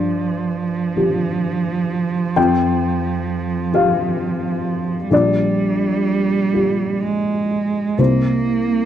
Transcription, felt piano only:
0, 0, Header, 1, 2, 480
1, 0, Start_track
1, 0, Tempo, 920245
1, 1234, Time_signature, 6, 3, 24, 8
1, 2668, Tempo, 947867
1, 3628, Tempo, 977199
1, 4533, End_track
2, 0, Start_track
2, 0, Title_t, "Felt piano"
2, 0, Program_c, 0, 0
2, 0, Control_c, 0, 64, 127
2, 0, Note_on_c, 0, 43, 43
2, 0, Note_on_c, 0, 74, 51
2, 504, Note_on_c, 0, 65, 36
2, 504, Note_on_c, 0, 67, 40
2, 1210, Note_off_c, 0, 74, 0
2, 1214, Note_off_c, 0, 43, 0
2, 1215, Note_off_c, 0, 65, 0
2, 1215, Note_off_c, 0, 67, 0
2, 1233, Note_on_c, 0, 79, 61
2, 1234, Note_on_c, 0, 41, 49
2, 1244, Control_c, 0, 64, 0
2, 1317, Control_c, 0, 64, 127
2, 1927, Note_off_c, 0, 79, 0
2, 1945, Note_on_c, 0, 65, 41
2, 1948, Note_on_c, 0, 67, 42
2, 1954, Note_on_c, 0, 77, 69
2, 2645, Note_off_c, 0, 65, 0
2, 2647, Note_off_c, 0, 41, 0
2, 2647, Note_off_c, 0, 67, 0
2, 2650, Note_off_c, 0, 77, 0
2, 2663, Note_on_c, 0, 34, 48
2, 2676, Note_on_c, 0, 74, 67
2, 2678, Control_c, 0, 64, 0
2, 2765, Control_c, 0, 64, 127
2, 3387, Note_on_c, 0, 65, 34
2, 3389, Note_on_c, 0, 67, 38
2, 4085, Note_off_c, 0, 34, 0
2, 4089, Note_off_c, 0, 65, 0
2, 4090, Note_off_c, 0, 67, 0
2, 4092, Note_off_c, 0, 74, 0
2, 4105, Note_on_c, 0, 36, 41
2, 4107, Note_on_c, 0, 72, 43
2, 4117, Control_c, 0, 64, 0
2, 4207, Control_c, 0, 64, 127
2, 4533, Note_off_c, 0, 36, 0
2, 4533, Note_off_c, 0, 72, 0
2, 4533, End_track
0, 0, End_of_file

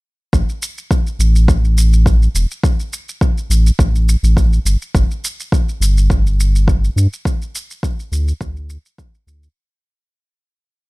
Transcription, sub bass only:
0, 0, Header, 1, 2, 480
1, 0, Start_track
1, 0, Tempo, 576923
1, 275, Time_signature, 4, 2, 24, 8
1, 9062, End_track
2, 0, Start_track
2, 0, Title_t, "Sub bass"
2, 0, Program_c, 0, 38
2, 275, Note_on_c, 0, 33, 89
2, 365, Note_off_c, 0, 33, 0
2, 991, Note_on_c, 0, 33, 88
2, 1900, Note_off_c, 0, 33, 0
2, 1953, Note_on_c, 0, 28, 78
2, 2044, Note_off_c, 0, 28, 0
2, 2910, Note_on_c, 0, 33, 89
2, 3086, Note_off_c, 0, 33, 0
2, 3152, Note_on_c, 0, 33, 73
2, 3461, Note_off_c, 0, 33, 0
2, 3521, Note_on_c, 0, 33, 75
2, 3820, Note_off_c, 0, 33, 0
2, 3872, Note_on_c, 0, 31, 87
2, 3964, Note_off_c, 0, 31, 0
2, 4116, Note_on_c, 0, 31, 91
2, 4206, Note_off_c, 0, 31, 0
2, 4829, Note_on_c, 0, 31, 88
2, 5739, Note_off_c, 0, 31, 0
2, 5792, Note_on_c, 0, 43, 82
2, 5883, Note_off_c, 0, 43, 0
2, 6754, Note_on_c, 0, 38, 91
2, 6928, Note_off_c, 0, 38, 0
2, 6994, Note_on_c, 0, 38, 74
2, 7302, Note_off_c, 0, 38, 0
2, 7711, Note_on_c, 0, 38, 102
2, 7887, Note_off_c, 0, 38, 0
2, 9062, End_track
0, 0, End_of_file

